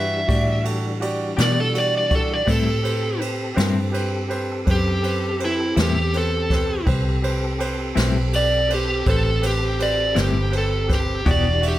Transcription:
Already playing: fingered electric bass G2, tonewheel organ E3 G3 D4, grand piano F#4 G4 B4, electric slide guitar E5
0.27 fingered electric bass A2, grand piano F#4 G4 D5, kick, ride
0.64 grand piano F#4 G4 A4, ride
1.00 grand piano F#4 G4 D5, ride
1.37 fingered electric bass B2, clean electric guitar E3 B3 D4 G4, grand piano F#4 G4 D5, snare, ride
1.42 electric slide guitar D5
1.60 electric slide guitar A4
1.73 grand piano F#4 G4 D5, ride
1.78 electric slide guitar D5
1.97 electric slide guitar D5
2.09 grand piano F#4 G4 D5, kick, ride
2.15 electric slide guitar A4
2.33 electric slide guitar D5
2.45 clean electric guitar A2 G3 C4 E4, fingered electric bass A2, tonewheel organ C4 G4 A4, grand piano G4 B4 C5, kick, ride
2.51 electric slide guitar A4
2.82 grand piano G4 B4 C5, ride
3.19 grand piano G4 B4 C5, ride
3.54 fingered electric bass G2, clean electric guitar A2 G3 C4 E4, grand piano G4 B4 C5, ride
3.59 snare
3.92 grand piano G4 B4 C5, ride
4.28 grand piano G4 B4 C5, ride
4.65 fingered electric bass F#2, grand piano G4 B4 C5, kick, ride
4.71 electric slide guitar G4
5.02 grand piano G4 B4 C5, ride
5.39 grand piano G4 B4 C5, ride
5.45 electric slide guitar E4
5.75 fingered electric bass E2, clean electric guitar A2 G3 C4 E4, grand piano G4 B4 C5, snare, ride
5.82 electric slide guitar G4
6.14 grand piano G4 B4 C5, electric slide guitar A4, ride
6.50 grand piano G4 B4 C5, kick, snare, ride
6.86 fingered electric bass C2, tonewheel organ C4 G4 A4, grand piano G4 B4 C5, kick, ride
7.22 grand piano G4 B4 C5, ride
7.59 grand piano G4 B4 C5, ride
7.95 fingered electric bass B1, clean electric guitar A2 G3 C4 E4, grand piano G4 B4 C5, snare, ride
8.32 grand piano G4 B4 D5, electric slide guitar D5, ride
8.69 grand piano G4 B4 C5, ride
8.74 electric slide guitar G4
9.06 fingered electric bass A1, grand piano G4 B4 C5, electric slide guitar A4, kick, ride
9.41 grand piano G4 B4 C5, ride
9.46 electric slide guitar G4
9.79 grand piano G4 B4 C5, electric slide guitar D5, ride
10.14 fingered electric bass G1, clean electric guitar A2 G3 C4 E4, grand piano G4 B4 C5, snare, ride
10.20 electric slide guitar G4
10.51 grand piano G4 B4 C5, ride
10.58 electric slide guitar A4
10.88 grand piano G4 B4 C5, kick, snare, ride
10.94 electric slide guitar G4
11.24 fingered electric bass E1, tonewheel organ E3 D4 G4, clean electric guitar E3 B3 D4 G4, grand piano F#4 G4 D5, kick, ride
11.31 electric slide guitar D5
11.61 grand piano F#4 G4 E5, ride
11.68 electric slide guitar G4

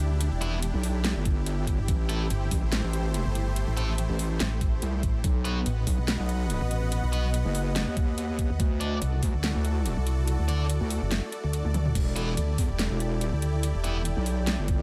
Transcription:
Already playing: wobble bass D2, supersaw synth D4 E4 G4, ambient pad G5, impact
0.21 closed hi-hat
0.32 wobble bass E1
0.41 distorted electric guitar E3 B3 E4, closed hi-hat
0.62 closed hi-hat
0.74 wobble bass B1
0.83 open hi-hat
1.04 snare, closed hi-hat
1.16 wobble bass G1
1.25 kick, closed hi-hat
1.46 closed hi-hat
1.67 kick, closed hi-hat
1.79 wobble bass G1
1.88 wobble bass A1, supersaw synth A3 C5, kick, closed hi-hat
2.09 distorted electric guitar A3 E4 A4, closed hi-hat
2.30 wobble bass G1, closed hi-hat
2.51 wobble bass A1, kick, open hi-hat
2.63 wobble bass A1
2.72 snare, closed hi-hat
2.84 wobble bass A1
2.93 closed hi-hat
3.14 closed hi-hat
3.26 wobble bass G1
3.35 closed hi-hat
3.56 closed hi-hat
3.68 wobble bass A1
3.77 distorted electric guitar A3 E4 A4, closed hi-hat
3.98 closed hi-hat
4.09 wobble bass A1
4.19 open hi-hat
4.40 wobble bass A1, snare, closed hi-hat
4.61 kick, closed hi-hat
4.82 wobble bass C2, closed hi-hat
5.03 wobble bass A1, kick, closed hi-hat
5.24 wobble bass B1, supersaw synth B3 B4 D#5 F#5, ambient pad F#4, kick, closed hi-hat
5.35 ambient pad B4
5.40 ambient pad F#5
5.45 distorted electric guitar B3 F#4 B4, closed hi-hat
5.53 ambient pad D#5
5.66 wobble bass A1, closed hi-hat
5.87 wobble bass B1, kick, open hi-hat
5.98 wobble bass B1
6.08 snare, closed hi-hat
6.19 wobble bass B1
6.29 closed hi-hat
6.50 closed hi-hat
6.61 wobble bass A1
6.71 closed hi-hat
6.92 closed hi-hat
7.03 wobble bass B1
7.12 distorted electric guitar B3 F#4 B4, closed hi-hat
7.34 closed hi-hat
7.45 wobble bass F#1
7.55 open hi-hat
7.76 snare, closed hi-hat
7.87 wobble bass D#2
7.97 kick, closed hi-hat
8.18 closed hi-hat
8.39 kick, closed hi-hat
8.50 wobble bass D#2
8.60 wobble bass D2, ambient pad E4, supersaw synth F#4 A4 D5, kick, closed hi-hat
8.66 ambient pad A4
8.80 distorted electric guitar D4 A4 D5, closed hi-hat
9.01 wobble bass C2, ambient pad D5, closed hi-hat
9.23 wobble bass D2, kick, open hi-hat
9.34 wobble bass D2
9.44 snare, closed hi-hat
9.55 wobble bass D2
9.65 closed hi-hat
9.86 closed hi-hat
9.97 wobble bass C2
10.07 closed hi-hat
10.28 closed hi-hat
10.39 wobble bass D2
10.48 distorted electric guitar D4 A4 D5, closed hi-hat
10.70 closed hi-hat
10.81 wobble bass D2
10.90 open hi-hat
11.02 wobble bass F#1
11.11 snare, closed hi-hat
11.32 closed hi-hat
11.44 wobble bass D2
11.53 closed hi-hat
11.65 wobble bass D2, high tom
11.74 closed hi-hat, mid tom
11.86 mid tom
11.95 wobble bass E1, supersaw synth E4 G4, kick, closed hi-hat, crash
12.16 distorted electric guitar E3 B3 E4, closed hi-hat
12.29 ambient pad G5
12.37 wobble bass D2, closed hi-hat
12.58 wobble bass E2, kick, open hi-hat
12.70 wobble bass E1
12.79 snare, closed hi-hat
12.91 wobble bass E1
13.00 closed hi-hat
13.21 closed hi-hat
13.33 wobble bass D2
13.42 closed hi-hat
13.63 closed hi-hat
13.75 wobble bass E1
13.84 distorted electric guitar E3 B3 E4, closed hi-hat
14.05 closed hi-hat
14.16 wobble bass B1
14.26 open hi-hat
14.47 snare, closed hi-hat
14.58 wobble bass G1
14.68 kick, closed hi-hat

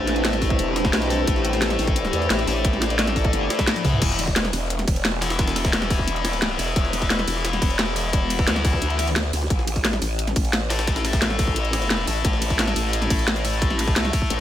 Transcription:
Already playing: wobble bass A1, distorted electric guitar A3 E4 A4, analog synth pad A3 E4 B4 C5, ambient pad C4 D4 G4
0.07 snare, closed hi-hat
0.16 closed hi-hat
0.25 snare, closed hi-hat
0.33 snare, closed hi-hat
0.42 kick, closed hi-hat, open hi-hat
0.50 kick, closed hi-hat
0.59 wobble bass E1, closed hi-hat
0.76 snare, closed hi-hat
0.85 kick, snare
0.93 wobble bass B1, snare, closed hi-hat
1.02 snare, closed hi-hat
1.09 distorted electric guitar A3 E4 A4, ambient pad D5, closed hi-hat, open hi-hat
1.27 wobble bass A1, kick, closed hi-hat
1.36 snare
1.45 closed hi-hat
1.53 snare, closed hi-hat
1.62 snare, closed hi-hat
1.70 snare, closed hi-hat
1.79 wobble bass A1, closed hi-hat, open hi-hat
1.87 kick, closed hi-hat
1.96 closed hi-hat
2.05 snare, closed hi-hat
2.13 wobble bass E2, closed hi-hat
2.22 closed hi-hat
2.30 wobble bass A1, snare, closed hi-hat
2.39 closed hi-hat
2.47 wobble bass A1, distorted electric guitar A3 E4 A4, closed hi-hat, open hi-hat
2.65 kick, closed hi-hat
2.73 snare
2.82 snare, closed hi-hat
2.90 snare, closed hi-hat
2.99 snare, closed hi-hat
3.07 snare, closed hi-hat
3.16 kick, closed hi-hat, open hi-hat
3.25 kick, closed hi-hat
3.33 wobble bass G1, closed hi-hat
3.50 snare, closed hi-hat
3.59 kick, snare, closed hi-hat
3.67 snare, closed hi-hat
3.76 snare, closed hi-hat, high tom
3.84 wobble bass C2, distorted electric guitar E3 B3 E4, kick, closed hi-hat, open hi-hat, mid tom
3.93 mid tom
4.02 wobble bass E1, kick, closed hi-hat, crash
4.10 snare
4.19 closed hi-hat, ride
4.27 kick, snare, closed hi-hat
4.36 snare, closed hi-hat
4.45 snare
4.53 wobble bass E1, closed hi-hat, open hi-hat, ride
4.70 closed hi-hat
4.79 snare, closed hi-hat
4.88 wobble bass E1, kick, closed hi-hat, ride
4.96 closed hi-hat
5.05 snare, closed hi-hat
5.21 distorted electric guitar E3 B3 E4, snare, closed hi-hat, open hi-hat, ride
5.30 snare, closed hi-hat
5.39 kick, snare, closed hi-hat
5.48 snare, closed hi-hat
5.56 snare, closed hi-hat, ride
5.65 kick, snare, closed hi-hat
5.73 wobble bass E1, snare, closed hi-hat
5.82 snare
5.90 kick, closed hi-hat, open hi-hat, ride
5.99 kick
6.07 closed hi-hat
6.16 closed hi-hat
6.25 snare, closed hi-hat, ride
6.33 snare, closed hi-hat
6.42 snare, closed hi-hat
6.59 wobble bass E1, distorted electric guitar E3 B3 E4, closed hi-hat, open hi-hat, ride
6.68 closed hi-hat
6.76 wobble bass E1, kick, closed hi-hat
6.85 snare
6.93 closed hi-hat, ride
7.02 kick, snare, closed hi-hat
7.10 snare, closed hi-hat
7.19 snare
7.27 wobble bass E1, closed hi-hat, open hi-hat, ride
7.36 snare
7.45 snare, closed hi-hat
7.53 snare, closed hi-hat
7.62 wobble bass E1, kick, closed hi-hat, ride
7.70 closed hi-hat
7.79 snare, closed hi-hat
7.96 distorted electric guitar E3 B3 E4, closed hi-hat, open hi-hat, ride
8.13 kick, closed hi-hat
8.30 closed hi-hat, ride
8.39 kick, closed hi-hat
8.47 wobble bass D2, snare, closed hi-hat
8.56 snare
8.65 kick, closed hi-hat, open hi-hat, ride
8.73 kick
8.82 wobble bass D2, closed hi-hat
8.90 closed hi-hat
8.99 distorted electric guitar E3 B3 E4, closed hi-hat, ride
9.08 closed hi-hat
9.16 snare, closed hi-hat
9.33 wobble bass D2, closed hi-hat, open hi-hat, ride
9.42 snare
9.50 wobble bass A1, kick, closed hi-hat
9.59 snare
9.67 closed hi-hat, ride
9.76 kick, snare, closed hi-hat
9.85 snare, closed hi-hat
9.93 snare
10.02 wobble bass A1, closed hi-hat, open hi-hat, ride
10.19 closed hi-hat
10.27 snare, closed hi-hat
10.36 wobble bass A1, kick, closed hi-hat, ride
10.45 closed hi-hat
10.53 snare, closed hi-hat
10.70 distorted electric guitar A3 E4 A4, snare, closed hi-hat, open hi-hat, ride
10.79 snare, closed hi-hat
10.87 kick, snare, closed hi-hat
10.96 snare, closed hi-hat
11.05 snare, closed hi-hat, ride
11.13 kick, snare, closed hi-hat
11.22 wobble bass A1, snare, closed hi-hat
11.30 snare
11.39 kick, closed hi-hat, open hi-hat, ride
11.48 kick
11.56 closed hi-hat
11.65 closed hi-hat
11.73 snare, closed hi-hat, ride
11.82 snare, closed hi-hat
11.90 snare, closed hi-hat
12.07 wobble bass A1, distorted electric guitar A3 E4 A4, closed hi-hat, open hi-hat, ride
12.16 closed hi-hat
12.25 wobble bass A1, kick, closed hi-hat
12.33 snare
12.42 closed hi-hat, ride
12.50 kick, snare, closed hi-hat
12.59 snare, closed hi-hat
12.67 snare
12.76 wobble bass A1, closed hi-hat, open hi-hat, ride
12.93 closed hi-hat
13.02 snare, closed hi-hat
13.10 wobble bass A1, kick, closed hi-hat, ride
13.19 snare, closed hi-hat
13.28 snare, closed hi-hat
13.36 closed hi-hat
13.45 distorted electric guitar A3 E4 A4, snare, open hi-hat, ride
13.53 closed hi-hat
13.62 kick, closed hi-hat
13.70 snare
13.79 snare, closed hi-hat, ride
13.88 kick, closed hi-hat
13.96 wobble bass C2, snare, closed hi-hat
14.05 snare
14.13 kick, closed hi-hat, open hi-hat, ride
14.22 kick
14.30 wobble bass A1, closed hi-hat

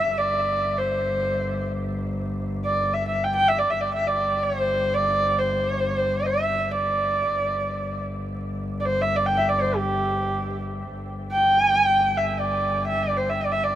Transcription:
Already playing: double bass G1, horsehead fiddle E5
0.11 double bass G1
0.18 horsehead fiddle D5
0.78 horsehead fiddle C5
2.64 horsehead fiddle D5
2.94 horsehead fiddle E5
3.09 horsehead fiddle E5
3.24 horsehead fiddle G5
3.36 horsehead fiddle G5
3.49 horsehead fiddle E5
3.58 horsehead fiddle D5
3.70 double bass G1, horsehead fiddle E5
3.81 horsehead fiddle D5
3.94 horsehead fiddle E5
4.07 horsehead fiddle D5
4.43 horsehead fiddle C5
4.94 horsehead fiddle D5
5.38 horsehead fiddle C5
6.26 horsehead fiddle E5
6.71 horsehead fiddle D5
7.32 double bass G1
8.80 horsehead fiddle D5
8.85 horsehead fiddle C5
9.02 horsehead fiddle E5
9.16 horsehead fiddle D5
9.26 horsehead fiddle G5
9.35 horsehead fiddle E5 G5
9.49 horsehead fiddle D5
9.58 horsehead fiddle C5 D5
9.77 horsehead fiddle G4
10.94 double bass G1
11.32 horsehead fiddle G5
12.17 horsehead fiddle E5
12.30 horsehead fiddle E5
12.39 horsehead fiddle D5
12.87 horsehead fiddle E5
13.03 horsehead fiddle D5
13.17 horsehead fiddle C5
13.29 horsehead fiddle E5
13.41 horsehead fiddle D5
13.52 horsehead fiddle E5
13.64 horsehead fiddle D5

